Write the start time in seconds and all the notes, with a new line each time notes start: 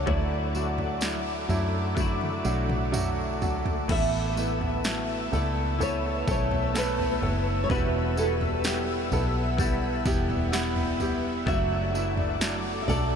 Already playing: A4 F#5
0.06 D2 A2 D3 F#3 A3 D4 E4 F#4 D5 E5 D6, kick, floor tom
0.53 F#3 A3 D4 E4 F#4, tambourine
0.78 floor tom
1.01 F#3 A3 D4 E4, snare, tambourine
1.48 F#2 F#3 A3 D4 E4, floor tom, tambourine
1.95 D3 F#3 A3 D4 E4, kick, high tom, tambourine
1.99 E4 F#4
2.21 high tom
2.44 B1 F#3 A3 D4 F#4 D5, tambourine
2.69 mid tom
2.92 F#3 A3 D4 F#4 E5, mid tom, tambourine
3.25 F#5
3.41 F#3 A3 D4 F#4, floor tom, tambourine
3.57 A5
3.66 floor tom
3.88 A1 A2 E3 A3 B3 E4 A4 B4 E5 A5 E6, kick, floor tom, crash, tambourine
4.36 A3 B3 E4 B4, tambourine
4.61 floor tom
4.84 A3 B3 E4 F#4, snare, tambourine
5.32 C#2 A3 B3 E4 A4 D5, floor tom, tambourine
5.78 E3 A3 B3 E4 A4, floor tom, tambourine
5.83 B3 E4 C#5
6.27 B1 A3 B3 E4 A4 C#5, kick, tambourine
6.51 floor tom
6.74 A3 B3 E4 A4 B4, snare, tambourine
6.99 floor tom
7.21 F#1 A3 B3 E4 A4, floor tom
7.64 C#5
7.69 E1 E2 B2 E3 G3 B3 E4 F#4 B4 E5 F#5, kick, floor tom, tambourine
8.16 E3 G3 B3 E4 F#4 A4, tambourine
8.41 floor tom
8.64 G3 B3 E4 G4 F#5, snare, tambourine
9.12 B1 G3 B3 E4 A4, floor tom, tambourine
9.57 E3 G3 B3 E4 F#5, kick, floor tom, tambourine
9.61 B3
10.05 E1 G3 B3 E4 G4, kick, tambourine
10.30 floor tom
10.52 G3 B3 E4 F#5, snare, tambourine
10.76 floor tom
11.00 G3 B3 E4 G4, floor tom, tambourine
11.46 F#1 F#3 A3 D4 F#4 A4 D5 E5 D6, kick, floor tom, tambourine
11.92 F#3 A3 D4 E4 F#4, tambourine
12.17 floor tom
12.40 F#3 A3 D4 E4, snare, tambourine
12.82 E5
12.88 B1 F#3 A3 D4 A4 D5, floor tom, tambourine